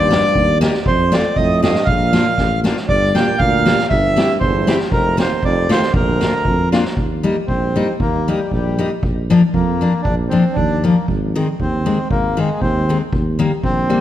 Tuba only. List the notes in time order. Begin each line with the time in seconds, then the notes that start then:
Already playing: D#2
0.35 D#2
0.86 F2
1.37 F2
1.86 A#1
2.38 A1
2.89 G1
3.40 D2
3.90 G1
4.41 G1
4.91 F1
5.42 F1
5.94 A#1
6.45 F2
6.96 D#2
7.48 A#1
7.99 D#2
8.51 A#1
9.02 A#1
9.53 F2
10.05 A#1
10.57 D#2
11.08 G#1
11.60 D#2
12.10 G#1
12.61 D#2
13.13 D#2
13.63 A#1